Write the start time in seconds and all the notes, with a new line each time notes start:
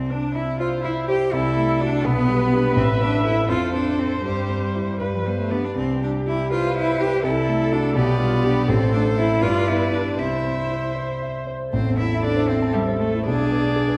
Already playing: C2 C4
0.10 C4 D4
0.35 E4
0.59 F4 C5
0.84 E4 E5
1.08 G4 C5
1.32 C2 E4 A4
1.56 A3
1.80 D4 F#4
2.04 B1 B3 B4
2.28 G3
2.52 D4 G4
2.75 A1 C4 E5
3.01 C4 D4
3.23 E4 A4
3.48 F2 F4 A4 C5
3.74 C4 D4
3.99 C4 D4 A4
4.24 G2 G3 G4
4.50 C4
4.75 E4 G4
5.00 G2 B4
5.14 F3
5.24 G3 B3 C5
5.39 A3
5.51 B3 D4 G4 D5
5.64 D4
5.76 C2 C4 G4
6.01 G3 D4
6.26 E4
6.50 F4 G4 B4 C5
6.75 E4 E5
6.99 G4
7.23 C2 E4 A4
7.48 A3
7.72 D4 F#4
7.95 B1 B3 G4 D5
8.20 G3 F4
8.44 D4 G4
8.68 A1 C4 A4 C5
8.93 A3 D4
9.17 C4 E4
9.42 G2 F4 B4 D5
9.68 B3 E4
9.93 D4 G4
10.18 C2 E4 C5 E5
10.44 C4
10.70 E4
10.96 C5
11.21 E5
11.47 C5
11.73 A1 C4 A4 C5
11.86 E2
11.98 C4 E4 E5
12.12 E4
12.23 D4 A4 D5
12.36 C5
12.48 C4 C5 E5
12.62 A5
12.73 G3 G4 E5
12.88 C5
13.00 A3 A4
13.14 E4
13.26 B1 D4 G#4 D5
13.40 B2
13.52 B3
13.64 D4
13.76 G#4
13.88 B4